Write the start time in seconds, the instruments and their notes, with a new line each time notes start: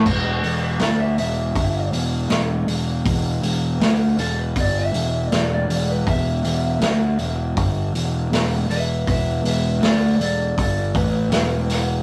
0.05 picked electric bass E1, kick, crash
0.43 picked electric bass E1, lead electric guitar A4, open hi-hat
0.62 lead electric guitar B4
0.79 picked electric bass D2, lead electric guitar D5, snare, open hi-hat
1.00 lead electric guitar E5
1.18 picked electric bass E1, lead electric guitar E5, open hi-hat
1.55 picked electric bass G1, kick, open hi-hat
1.93 picked electric bass E1, open hi-hat
2.30 picked electric bass E1, snare, open hi-hat
2.67 picked electric bass E1, open hi-hat
3.05 picked electric bass E1, kick, open hi-hat
3.42 picked electric bass E1, open hi-hat
3.80 picked electric bass D2, snare, open hi-hat
4.18 picked electric bass E1, lead electric guitar A4, open hi-hat
4.39 lead electric guitar B4
4.56 picked electric bass G1, lead electric guitar D5, kick, open hi-hat
4.79 lead electric guitar E5
4.93 picked electric bass E1, open hi-hat
5.29 picked electric bass E1, lead electric guitar D5, snare, open hi-hat
5.54 lead electric guitar D5
5.68 picked electric bass E1, open hi-hat
5.90 lead electric guitar B4
6.07 picked electric bass E1, lead electric guitar E5, kick, open hi-hat
6.44 picked electric bass E1, open hi-hat
6.80 picked electric bass D2, snare, open hi-hat
7.19 picked electric bass E1, open hi-hat
7.57 picked electric bass G1, kick, open hi-hat
7.94 picked electric bass E1, open hi-hat
8.30 picked electric bass E1, snare, open hi-hat
8.68 picked electric bass E1, lead electric guitar B4, open hi-hat
8.72 lead electric guitar E5
9.07 picked electric bass E1, lead electric guitar B4 E5, kick, open hi-hat
9.43 picked electric bass E1, lead electric guitar B4, open hi-hat
9.49 lead electric guitar E5
9.80 picked electric bass D2, snare, open hi-hat
9.84 lead electric guitar A4 D5
10.16 picked electric bass E1
10.21 lead electric guitar A4 D5, open hi-hat
10.58 picked electric bass G1, lead electric guitar A4 D5, kick, open hi-hat
10.94 picked electric bass A1, lead electric guitar B4, kick, open hi-hat
11.29 picked electric bass E1, snare, open hi-hat
11.70 snare, open hi-hat